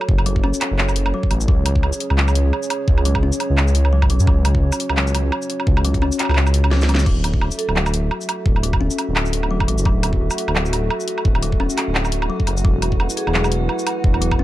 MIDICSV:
0, 0, Header, 1, 7, 480
1, 0, Start_track
1, 0, Tempo, 348837
1, 122, Time_signature, 4, 2, 24, 8
1, 19865, End_track
2, 0, Start_track
2, 0, Title_t, "Analog synth pad"
2, 0, Program_c, 0, 89
2, 0, Note_on_c, 0, 66, 81
2, 0, Note_on_c, 0, 69, 76
2, 0, Note_on_c, 0, 73, 88
2, 1989, Note_off_c, 0, 66, 0
2, 1990, Note_off_c, 0, 69, 0
2, 2038, Note_on_c, 0, 61, 82
2, 2038, Note_on_c, 0, 68, 76
2, 5842, Note_off_c, 0, 68, 0
2, 5880, Note_on_c, 0, 66, 76
2, 9665, Note_off_c, 0, 61, 0
2, 9668, Note_off_c, 0, 73, 0
2, 9683, Note_off_c, 0, 66, 0
2, 9709, Note_on_c, 0, 76, 91
2, 9715, Note_on_c, 0, 66, 82
2, 9718, Note_on_c, 0, 69, 76
2, 17341, Note_off_c, 0, 76, 0
2, 17344, Note_off_c, 0, 66, 0
2, 17345, Note_off_c, 0, 69, 0
2, 17389, Note_on_c, 0, 78, 94
2, 17394, Note_on_c, 0, 64, 86
2, 17397, Note_on_c, 0, 71, 75
2, 19865, Note_off_c, 0, 64, 0
2, 19865, Note_off_c, 0, 71, 0
2, 19865, Note_off_c, 0, 78, 0
2, 19865, End_track
3, 0, Start_track
3, 0, Title_t, "Vibraphone"
3, 0, Program_c, 1, 11
3, 10433, Note_on_c, 1, 69, 92
3, 10918, Note_off_c, 1, 69, 0
3, 18118, Note_on_c, 1, 68, 91
3, 18600, Note_off_c, 1, 68, 0
3, 19865, End_track
4, 0, Start_track
4, 0, Title_t, "Synth drone"
4, 0, Program_c, 2, 95
4, 9713, Note_on_c, 2, 66, 90
4, 9714, Note_on_c, 2, 57, 92
4, 19865, Note_off_c, 2, 57, 0
4, 19865, Note_off_c, 2, 66, 0
4, 19865, End_track
5, 0, Start_track
5, 0, Title_t, "Kalimba"
5, 0, Program_c, 3, 108
5, 360, Note_on_c, 3, 54, 77
5, 580, Note_off_c, 3, 54, 0
5, 600, Note_on_c, 3, 61, 100
5, 1541, Note_off_c, 3, 61, 0
5, 1566, Note_on_c, 3, 54, 78
5, 1794, Note_off_c, 3, 54, 0
5, 2039, Note_on_c, 3, 54, 83
5, 2270, Note_off_c, 3, 54, 0
5, 2999, Note_on_c, 3, 54, 84
5, 3940, Note_off_c, 3, 54, 0
5, 4200, Note_on_c, 3, 54, 76
5, 4421, Note_off_c, 3, 54, 0
5, 4444, Note_on_c, 3, 61, 101
5, 5383, Note_off_c, 3, 61, 0
5, 5403, Note_on_c, 3, 54, 80
5, 5622, Note_off_c, 3, 54, 0
5, 5643, Note_on_c, 3, 54, 79
5, 5862, Note_off_c, 3, 54, 0
5, 5884, Note_on_c, 3, 54, 83
5, 6113, Note_off_c, 3, 54, 0
5, 6844, Note_on_c, 3, 54, 86
5, 7782, Note_off_c, 3, 54, 0
5, 8043, Note_on_c, 3, 54, 77
5, 8262, Note_off_c, 3, 54, 0
5, 8281, Note_on_c, 3, 61, 106
5, 9221, Note_off_c, 3, 61, 0
5, 9239, Note_on_c, 3, 54, 77
5, 9460, Note_off_c, 3, 54, 0
5, 9476, Note_on_c, 3, 54, 76
5, 9699, Note_off_c, 3, 54, 0
5, 9718, Note_on_c, 3, 54, 83
5, 9950, Note_off_c, 3, 54, 0
5, 10677, Note_on_c, 3, 54, 85
5, 11619, Note_off_c, 3, 54, 0
5, 11878, Note_on_c, 3, 54, 78
5, 12100, Note_off_c, 3, 54, 0
5, 12117, Note_on_c, 3, 61, 102
5, 13059, Note_off_c, 3, 61, 0
5, 13080, Note_on_c, 3, 54, 78
5, 13301, Note_off_c, 3, 54, 0
5, 13321, Note_on_c, 3, 54, 78
5, 13541, Note_off_c, 3, 54, 0
5, 13562, Note_on_c, 3, 54, 85
5, 13792, Note_off_c, 3, 54, 0
5, 14526, Note_on_c, 3, 54, 89
5, 15463, Note_off_c, 3, 54, 0
5, 15723, Note_on_c, 3, 54, 77
5, 15942, Note_off_c, 3, 54, 0
5, 15960, Note_on_c, 3, 61, 100
5, 16900, Note_off_c, 3, 61, 0
5, 16921, Note_on_c, 3, 54, 78
5, 17151, Note_off_c, 3, 54, 0
5, 17402, Note_on_c, 3, 54, 80
5, 17632, Note_off_c, 3, 54, 0
5, 18362, Note_on_c, 3, 54, 85
5, 19301, Note_off_c, 3, 54, 0
5, 19557, Note_on_c, 3, 54, 77
5, 19779, Note_off_c, 3, 54, 0
5, 19804, Note_on_c, 3, 61, 108
5, 19865, Note_off_c, 3, 61, 0
5, 19865, End_track
6, 0, Start_track
6, 0, Title_t, "Detuned saw bass"
6, 0, Program_c, 4, 39
6, 116, Note_on_c, 4, 30, 97
6, 719, Note_off_c, 4, 30, 0
6, 980, Note_on_c, 4, 30, 88
6, 1550, Note_off_c, 4, 30, 0
6, 1798, Note_on_c, 4, 33, 108
6, 2024, Note_off_c, 4, 33, 0
6, 2040, Note_on_c, 4, 37, 102
6, 2640, Note_off_c, 4, 37, 0
6, 2897, Note_on_c, 4, 37, 87
6, 3468, Note_off_c, 4, 37, 0
6, 3959, Note_on_c, 4, 37, 103
6, 4560, Note_off_c, 4, 37, 0
6, 4815, Note_on_c, 4, 37, 88
6, 5638, Note_on_c, 4, 35, 105
6, 5658, Note_off_c, 4, 37, 0
6, 5766, Note_off_c, 4, 35, 0
6, 5776, Note_on_c, 4, 42, 91
6, 5873, Note_off_c, 4, 42, 0
6, 5881, Note_on_c, 4, 37, 104
6, 6481, Note_off_c, 4, 37, 0
6, 6740, Note_on_c, 4, 37, 87
6, 7310, Note_off_c, 4, 37, 0
6, 7801, Note_on_c, 4, 37, 102
6, 8401, Note_off_c, 4, 37, 0
6, 8656, Note_on_c, 4, 37, 86
6, 8746, Note_off_c, 4, 37, 0
6, 8754, Note_on_c, 4, 37, 101
6, 9705, Note_off_c, 4, 37, 0
6, 9716, Note_on_c, 4, 26, 100
6, 10318, Note_off_c, 4, 26, 0
6, 10568, Note_on_c, 4, 26, 88
6, 11144, Note_off_c, 4, 26, 0
6, 11637, Note_on_c, 4, 26, 101
6, 12239, Note_off_c, 4, 26, 0
6, 12502, Note_on_c, 4, 26, 91
6, 13325, Note_on_c, 4, 33, 104
6, 13346, Note_off_c, 4, 26, 0
6, 13450, Note_off_c, 4, 33, 0
6, 13460, Note_on_c, 4, 30, 91
6, 13549, Note_off_c, 4, 30, 0
6, 13557, Note_on_c, 4, 26, 101
6, 14159, Note_off_c, 4, 26, 0
6, 14418, Note_on_c, 4, 26, 87
6, 14989, Note_off_c, 4, 26, 0
6, 15482, Note_on_c, 4, 26, 101
6, 16081, Note_off_c, 4, 26, 0
6, 16342, Note_on_c, 4, 26, 87
6, 16911, Note_off_c, 4, 26, 0
6, 17163, Note_on_c, 4, 30, 105
6, 17386, Note_off_c, 4, 30, 0
6, 17401, Note_on_c, 4, 28, 104
6, 18001, Note_off_c, 4, 28, 0
6, 18259, Note_on_c, 4, 28, 88
6, 18829, Note_off_c, 4, 28, 0
6, 19320, Note_on_c, 4, 28, 102
6, 19865, Note_off_c, 4, 28, 0
6, 19865, End_track
7, 0, Start_track
7, 0, Title_t, "Drums"
7, 15, Note_on_c, 9, 77, 51
7, 119, Note_on_c, 9, 36, 121
7, 152, Note_off_c, 9, 77, 0
7, 254, Note_on_c, 9, 77, 79
7, 256, Note_off_c, 9, 36, 0
7, 358, Note_on_c, 9, 42, 82
7, 391, Note_off_c, 9, 77, 0
7, 495, Note_on_c, 9, 36, 62
7, 496, Note_off_c, 9, 42, 0
7, 599, Note_on_c, 9, 77, 52
7, 633, Note_off_c, 9, 36, 0
7, 736, Note_off_c, 9, 77, 0
7, 740, Note_on_c, 9, 82, 64
7, 840, Note_on_c, 9, 39, 64
7, 840, Note_on_c, 9, 42, 67
7, 840, Note_on_c, 9, 77, 79
7, 878, Note_off_c, 9, 82, 0
7, 978, Note_off_c, 9, 39, 0
7, 978, Note_off_c, 9, 42, 0
7, 978, Note_off_c, 9, 77, 0
7, 1081, Note_on_c, 9, 39, 127
7, 1218, Note_off_c, 9, 39, 0
7, 1218, Note_on_c, 9, 77, 51
7, 1218, Note_on_c, 9, 82, 37
7, 1319, Note_on_c, 9, 42, 82
7, 1356, Note_off_c, 9, 77, 0
7, 1356, Note_off_c, 9, 82, 0
7, 1455, Note_on_c, 9, 77, 72
7, 1456, Note_off_c, 9, 42, 0
7, 1593, Note_off_c, 9, 77, 0
7, 1697, Note_on_c, 9, 36, 64
7, 1798, Note_on_c, 9, 42, 67
7, 1798, Note_on_c, 9, 77, 53
7, 1835, Note_off_c, 9, 36, 0
7, 1936, Note_off_c, 9, 42, 0
7, 1936, Note_off_c, 9, 77, 0
7, 1939, Note_on_c, 9, 82, 66
7, 2040, Note_on_c, 9, 36, 122
7, 2076, Note_off_c, 9, 82, 0
7, 2178, Note_off_c, 9, 36, 0
7, 2279, Note_on_c, 9, 42, 81
7, 2279, Note_on_c, 9, 77, 52
7, 2416, Note_on_c, 9, 36, 59
7, 2417, Note_off_c, 9, 42, 0
7, 2417, Note_off_c, 9, 77, 0
7, 2520, Note_on_c, 9, 77, 77
7, 2553, Note_off_c, 9, 36, 0
7, 2654, Note_on_c, 9, 82, 67
7, 2657, Note_off_c, 9, 77, 0
7, 2758, Note_on_c, 9, 42, 63
7, 2792, Note_off_c, 9, 82, 0
7, 2893, Note_on_c, 9, 77, 53
7, 2895, Note_off_c, 9, 42, 0
7, 2998, Note_on_c, 9, 39, 116
7, 3031, Note_off_c, 9, 77, 0
7, 3135, Note_off_c, 9, 39, 0
7, 3137, Note_on_c, 9, 77, 75
7, 3137, Note_on_c, 9, 82, 38
7, 3240, Note_on_c, 9, 42, 80
7, 3274, Note_off_c, 9, 77, 0
7, 3274, Note_off_c, 9, 82, 0
7, 3377, Note_off_c, 9, 42, 0
7, 3482, Note_on_c, 9, 77, 51
7, 3617, Note_on_c, 9, 82, 40
7, 3620, Note_off_c, 9, 77, 0
7, 3719, Note_on_c, 9, 42, 67
7, 3719, Note_on_c, 9, 77, 77
7, 3754, Note_off_c, 9, 82, 0
7, 3856, Note_off_c, 9, 42, 0
7, 3856, Note_off_c, 9, 77, 0
7, 3959, Note_on_c, 9, 36, 118
7, 4095, Note_on_c, 9, 77, 55
7, 4097, Note_off_c, 9, 36, 0
7, 4201, Note_on_c, 9, 42, 78
7, 4233, Note_off_c, 9, 77, 0
7, 4334, Note_on_c, 9, 77, 79
7, 4336, Note_on_c, 9, 36, 60
7, 4339, Note_off_c, 9, 42, 0
7, 4471, Note_off_c, 9, 77, 0
7, 4474, Note_off_c, 9, 36, 0
7, 4576, Note_on_c, 9, 82, 69
7, 4680, Note_on_c, 9, 42, 62
7, 4680, Note_on_c, 9, 77, 51
7, 4714, Note_off_c, 9, 82, 0
7, 4817, Note_off_c, 9, 42, 0
7, 4817, Note_off_c, 9, 77, 0
7, 4919, Note_on_c, 9, 39, 115
7, 4919, Note_on_c, 9, 77, 80
7, 5056, Note_off_c, 9, 39, 0
7, 5056, Note_off_c, 9, 77, 0
7, 5058, Note_on_c, 9, 82, 40
7, 5158, Note_on_c, 9, 42, 76
7, 5196, Note_off_c, 9, 82, 0
7, 5295, Note_off_c, 9, 42, 0
7, 5295, Note_on_c, 9, 77, 53
7, 5433, Note_off_c, 9, 77, 0
7, 5534, Note_on_c, 9, 77, 83
7, 5536, Note_on_c, 9, 36, 62
7, 5639, Note_on_c, 9, 42, 67
7, 5671, Note_off_c, 9, 77, 0
7, 5674, Note_off_c, 9, 36, 0
7, 5776, Note_off_c, 9, 42, 0
7, 5776, Note_on_c, 9, 82, 71
7, 5880, Note_on_c, 9, 36, 118
7, 5880, Note_on_c, 9, 77, 54
7, 5914, Note_off_c, 9, 82, 0
7, 6018, Note_off_c, 9, 36, 0
7, 6018, Note_off_c, 9, 77, 0
7, 6122, Note_on_c, 9, 42, 81
7, 6122, Note_on_c, 9, 77, 85
7, 6257, Note_on_c, 9, 36, 59
7, 6260, Note_off_c, 9, 42, 0
7, 6260, Note_off_c, 9, 77, 0
7, 6395, Note_off_c, 9, 36, 0
7, 6500, Note_on_c, 9, 77, 55
7, 6500, Note_on_c, 9, 82, 71
7, 6604, Note_on_c, 9, 42, 66
7, 6638, Note_off_c, 9, 77, 0
7, 6638, Note_off_c, 9, 82, 0
7, 6736, Note_on_c, 9, 77, 86
7, 6741, Note_off_c, 9, 42, 0
7, 6837, Note_on_c, 9, 39, 116
7, 6873, Note_off_c, 9, 77, 0
7, 6975, Note_off_c, 9, 39, 0
7, 6979, Note_on_c, 9, 82, 40
7, 7080, Note_on_c, 9, 42, 80
7, 7080, Note_on_c, 9, 77, 56
7, 7117, Note_off_c, 9, 82, 0
7, 7218, Note_off_c, 9, 42, 0
7, 7218, Note_off_c, 9, 77, 0
7, 7322, Note_on_c, 9, 77, 87
7, 7459, Note_off_c, 9, 77, 0
7, 7460, Note_on_c, 9, 82, 42
7, 7563, Note_on_c, 9, 42, 68
7, 7597, Note_off_c, 9, 82, 0
7, 7701, Note_off_c, 9, 42, 0
7, 7701, Note_on_c, 9, 77, 55
7, 7801, Note_on_c, 9, 36, 119
7, 7839, Note_off_c, 9, 77, 0
7, 7938, Note_off_c, 9, 36, 0
7, 7938, Note_on_c, 9, 77, 91
7, 8043, Note_on_c, 9, 42, 85
7, 8076, Note_off_c, 9, 77, 0
7, 8177, Note_on_c, 9, 36, 57
7, 8181, Note_off_c, 9, 42, 0
7, 8181, Note_on_c, 9, 42, 37
7, 8284, Note_on_c, 9, 77, 56
7, 8315, Note_off_c, 9, 36, 0
7, 8319, Note_off_c, 9, 42, 0
7, 8421, Note_on_c, 9, 82, 67
7, 8422, Note_off_c, 9, 77, 0
7, 8522, Note_on_c, 9, 39, 60
7, 8522, Note_on_c, 9, 42, 71
7, 8522, Note_on_c, 9, 77, 38
7, 8558, Note_off_c, 9, 82, 0
7, 8571, Note_off_c, 9, 77, 0
7, 8571, Note_on_c, 9, 77, 44
7, 8603, Note_off_c, 9, 77, 0
7, 8603, Note_on_c, 9, 77, 52
7, 8659, Note_off_c, 9, 39, 0
7, 8659, Note_off_c, 9, 42, 0
7, 8661, Note_off_c, 9, 77, 0
7, 8661, Note_on_c, 9, 77, 59
7, 8682, Note_off_c, 9, 77, 0
7, 8682, Note_on_c, 9, 77, 67
7, 8728, Note_off_c, 9, 77, 0
7, 8728, Note_on_c, 9, 77, 73
7, 8761, Note_on_c, 9, 39, 115
7, 8865, Note_off_c, 9, 77, 0
7, 8897, Note_on_c, 9, 77, 58
7, 8897, Note_on_c, 9, 82, 39
7, 8899, Note_off_c, 9, 39, 0
7, 8998, Note_on_c, 9, 42, 81
7, 9035, Note_off_c, 9, 77, 0
7, 9035, Note_off_c, 9, 82, 0
7, 9136, Note_off_c, 9, 42, 0
7, 9136, Note_on_c, 9, 77, 84
7, 9239, Note_on_c, 9, 38, 69
7, 9273, Note_off_c, 9, 77, 0
7, 9376, Note_off_c, 9, 38, 0
7, 9376, Note_on_c, 9, 82, 40
7, 9399, Note_on_c, 9, 38, 86
7, 9481, Note_on_c, 9, 42, 72
7, 9481, Note_on_c, 9, 77, 58
7, 9513, Note_off_c, 9, 82, 0
7, 9537, Note_off_c, 9, 38, 0
7, 9560, Note_on_c, 9, 38, 103
7, 9619, Note_off_c, 9, 42, 0
7, 9619, Note_off_c, 9, 77, 0
7, 9620, Note_on_c, 9, 82, 69
7, 9698, Note_off_c, 9, 38, 0
7, 9718, Note_on_c, 9, 36, 122
7, 9721, Note_on_c, 9, 49, 75
7, 9758, Note_off_c, 9, 82, 0
7, 9855, Note_off_c, 9, 36, 0
7, 9858, Note_off_c, 9, 49, 0
7, 9962, Note_on_c, 9, 42, 88
7, 9962, Note_on_c, 9, 77, 57
7, 10094, Note_on_c, 9, 36, 62
7, 10100, Note_off_c, 9, 42, 0
7, 10100, Note_off_c, 9, 77, 0
7, 10202, Note_on_c, 9, 77, 84
7, 10231, Note_off_c, 9, 36, 0
7, 10338, Note_on_c, 9, 82, 67
7, 10339, Note_off_c, 9, 77, 0
7, 10440, Note_on_c, 9, 42, 70
7, 10475, Note_off_c, 9, 82, 0
7, 10577, Note_off_c, 9, 42, 0
7, 10577, Note_on_c, 9, 77, 56
7, 10681, Note_on_c, 9, 39, 120
7, 10714, Note_off_c, 9, 77, 0
7, 10817, Note_on_c, 9, 77, 89
7, 10817, Note_on_c, 9, 82, 37
7, 10818, Note_off_c, 9, 39, 0
7, 10920, Note_on_c, 9, 42, 86
7, 10955, Note_off_c, 9, 77, 0
7, 10955, Note_off_c, 9, 82, 0
7, 11058, Note_off_c, 9, 42, 0
7, 11160, Note_on_c, 9, 77, 57
7, 11298, Note_off_c, 9, 77, 0
7, 11299, Note_on_c, 9, 82, 40
7, 11404, Note_on_c, 9, 42, 71
7, 11404, Note_on_c, 9, 77, 85
7, 11437, Note_off_c, 9, 82, 0
7, 11541, Note_off_c, 9, 42, 0
7, 11541, Note_off_c, 9, 77, 0
7, 11636, Note_on_c, 9, 36, 125
7, 11774, Note_off_c, 9, 36, 0
7, 11778, Note_on_c, 9, 77, 56
7, 11881, Note_on_c, 9, 42, 88
7, 11916, Note_off_c, 9, 77, 0
7, 12014, Note_on_c, 9, 36, 65
7, 12016, Note_on_c, 9, 77, 80
7, 12019, Note_off_c, 9, 42, 0
7, 12152, Note_off_c, 9, 36, 0
7, 12154, Note_off_c, 9, 77, 0
7, 12256, Note_on_c, 9, 82, 64
7, 12363, Note_on_c, 9, 42, 70
7, 12363, Note_on_c, 9, 77, 55
7, 12394, Note_off_c, 9, 82, 0
7, 12501, Note_off_c, 9, 42, 0
7, 12501, Note_off_c, 9, 77, 0
7, 12601, Note_on_c, 9, 39, 122
7, 12601, Note_on_c, 9, 77, 79
7, 12736, Note_on_c, 9, 82, 37
7, 12738, Note_off_c, 9, 39, 0
7, 12738, Note_off_c, 9, 77, 0
7, 12840, Note_on_c, 9, 42, 83
7, 12874, Note_off_c, 9, 82, 0
7, 12977, Note_off_c, 9, 42, 0
7, 12978, Note_on_c, 9, 77, 55
7, 13115, Note_off_c, 9, 77, 0
7, 13215, Note_on_c, 9, 36, 67
7, 13215, Note_on_c, 9, 77, 86
7, 13323, Note_on_c, 9, 42, 73
7, 13353, Note_off_c, 9, 36, 0
7, 13353, Note_off_c, 9, 77, 0
7, 13460, Note_off_c, 9, 42, 0
7, 13461, Note_on_c, 9, 82, 66
7, 13559, Note_on_c, 9, 36, 127
7, 13565, Note_on_c, 9, 77, 53
7, 13598, Note_off_c, 9, 82, 0
7, 13697, Note_off_c, 9, 36, 0
7, 13703, Note_off_c, 9, 77, 0
7, 13804, Note_on_c, 9, 42, 85
7, 13804, Note_on_c, 9, 77, 81
7, 13936, Note_on_c, 9, 36, 64
7, 13942, Note_off_c, 9, 42, 0
7, 13942, Note_off_c, 9, 77, 0
7, 14073, Note_off_c, 9, 36, 0
7, 14182, Note_on_c, 9, 77, 51
7, 14182, Note_on_c, 9, 82, 63
7, 14286, Note_on_c, 9, 42, 69
7, 14320, Note_off_c, 9, 77, 0
7, 14320, Note_off_c, 9, 82, 0
7, 14421, Note_on_c, 9, 77, 79
7, 14424, Note_off_c, 9, 42, 0
7, 14524, Note_on_c, 9, 39, 127
7, 14559, Note_off_c, 9, 77, 0
7, 14661, Note_on_c, 9, 82, 37
7, 14662, Note_off_c, 9, 39, 0
7, 14765, Note_on_c, 9, 42, 86
7, 14765, Note_on_c, 9, 77, 55
7, 14799, Note_off_c, 9, 82, 0
7, 14902, Note_off_c, 9, 42, 0
7, 14902, Note_off_c, 9, 77, 0
7, 15005, Note_on_c, 9, 77, 81
7, 15139, Note_on_c, 9, 82, 37
7, 15142, Note_off_c, 9, 77, 0
7, 15241, Note_on_c, 9, 42, 71
7, 15277, Note_off_c, 9, 82, 0
7, 15379, Note_off_c, 9, 42, 0
7, 15380, Note_on_c, 9, 77, 52
7, 15481, Note_on_c, 9, 36, 127
7, 15518, Note_off_c, 9, 77, 0
7, 15618, Note_on_c, 9, 77, 80
7, 15619, Note_off_c, 9, 36, 0
7, 15721, Note_on_c, 9, 42, 82
7, 15755, Note_off_c, 9, 77, 0
7, 15857, Note_on_c, 9, 36, 65
7, 15859, Note_off_c, 9, 42, 0
7, 15961, Note_on_c, 9, 77, 50
7, 15995, Note_off_c, 9, 36, 0
7, 16098, Note_on_c, 9, 82, 63
7, 16099, Note_off_c, 9, 77, 0
7, 16203, Note_on_c, 9, 39, 66
7, 16203, Note_on_c, 9, 42, 66
7, 16203, Note_on_c, 9, 77, 79
7, 16235, Note_off_c, 9, 82, 0
7, 16340, Note_off_c, 9, 39, 0
7, 16340, Note_off_c, 9, 42, 0
7, 16340, Note_off_c, 9, 77, 0
7, 16443, Note_on_c, 9, 39, 122
7, 16577, Note_on_c, 9, 77, 52
7, 16577, Note_on_c, 9, 82, 38
7, 16580, Note_off_c, 9, 39, 0
7, 16678, Note_on_c, 9, 42, 83
7, 16715, Note_off_c, 9, 77, 0
7, 16715, Note_off_c, 9, 82, 0
7, 16815, Note_off_c, 9, 42, 0
7, 16816, Note_on_c, 9, 77, 75
7, 16953, Note_off_c, 9, 77, 0
7, 17059, Note_on_c, 9, 36, 65
7, 17159, Note_on_c, 9, 42, 68
7, 17159, Note_on_c, 9, 77, 53
7, 17196, Note_off_c, 9, 36, 0
7, 17297, Note_off_c, 9, 42, 0
7, 17297, Note_off_c, 9, 77, 0
7, 17299, Note_on_c, 9, 82, 65
7, 17401, Note_on_c, 9, 36, 123
7, 17437, Note_off_c, 9, 82, 0
7, 17539, Note_off_c, 9, 36, 0
7, 17643, Note_on_c, 9, 42, 78
7, 17643, Note_on_c, 9, 77, 53
7, 17777, Note_on_c, 9, 36, 64
7, 17781, Note_off_c, 9, 42, 0
7, 17781, Note_off_c, 9, 77, 0
7, 17886, Note_on_c, 9, 77, 79
7, 17915, Note_off_c, 9, 36, 0
7, 18023, Note_off_c, 9, 77, 0
7, 18023, Note_on_c, 9, 82, 69
7, 18124, Note_on_c, 9, 42, 66
7, 18160, Note_off_c, 9, 82, 0
7, 18261, Note_on_c, 9, 77, 52
7, 18262, Note_off_c, 9, 42, 0
7, 18361, Note_on_c, 9, 39, 121
7, 18399, Note_off_c, 9, 77, 0
7, 18498, Note_off_c, 9, 39, 0
7, 18498, Note_on_c, 9, 77, 78
7, 18498, Note_on_c, 9, 82, 38
7, 18599, Note_on_c, 9, 42, 76
7, 18635, Note_off_c, 9, 77, 0
7, 18635, Note_off_c, 9, 82, 0
7, 18736, Note_off_c, 9, 42, 0
7, 18838, Note_on_c, 9, 77, 53
7, 18976, Note_off_c, 9, 77, 0
7, 18976, Note_on_c, 9, 82, 41
7, 19080, Note_on_c, 9, 42, 69
7, 19080, Note_on_c, 9, 77, 79
7, 19113, Note_off_c, 9, 82, 0
7, 19217, Note_off_c, 9, 42, 0
7, 19217, Note_off_c, 9, 77, 0
7, 19321, Note_on_c, 9, 36, 118
7, 19457, Note_on_c, 9, 77, 56
7, 19459, Note_off_c, 9, 36, 0
7, 19562, Note_on_c, 9, 42, 81
7, 19595, Note_off_c, 9, 77, 0
7, 19697, Note_on_c, 9, 36, 58
7, 19699, Note_on_c, 9, 77, 82
7, 19700, Note_off_c, 9, 42, 0
7, 19835, Note_off_c, 9, 36, 0
7, 19837, Note_off_c, 9, 77, 0
7, 19865, End_track
0, 0, End_of_file